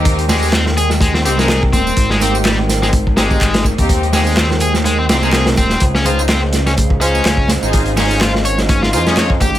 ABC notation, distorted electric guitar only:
X:1
M:4/4
L:1/16
Q:"Swing 16ths" 1/4=125
K:Ab
V:1 name="Distorted electric guitar"
z2 A,2 C z A z A, C C A, A z C2- | C A, C z G, z2 A, z2 A,4 z2 | z2 A,2 C z A z A, C C A, A z C2 | z D F z C z2 D z2 D4 z2 |
z2 D2 F z d z D F F D d z G2 |]